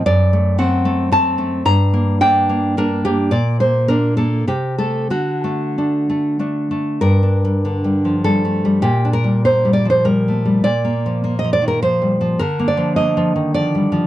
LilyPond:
\new Staff \with { instrumentName = "Nylon-string guitar" } { \time 3/4 \key g \minor \tempo 4 = 103 << { d''4 fis''4 a''4 | bes''4 g''4 bes'8 g'8 | d''8 c''8 bes'8 a'8 g'8 a'8 | fis'2~ fis'8 r8 |
bes'2 a'4 | g'8 bes'8 c''8 d''16 c''16 bes'4 | d''4~ d''16 ees''16 d''16 bes'16 c''4 | bes'8 d''8 ees''4 d''4 | } \\ { fis,8 a8 <a c'>8 a8 <a c'>8 a8 | g,8 bes8 <bes d'>8 bes8 <bes d'>8 bes8 | bes,8 bes8 <bes d'>8 bes8 c8 a8 | d8 a8 <a d'>8 a8 <a d'>8 a8 |
\tuplet 3/2 { g,8 d'8 g8 d8 g8 f8 g8 a8 g8 } | \tuplet 3/2 { bes,8 d'8 g8 bes8 g8 f8 g8 a8 g8 } | \tuplet 3/2 { bes,8 bes8 f8 bes8 f8 ees8 f8 g8 f8 } | \tuplet 3/2 { d8 bes8 f8 bes8 f8 ees8 f8 g8 f8 } | } >> }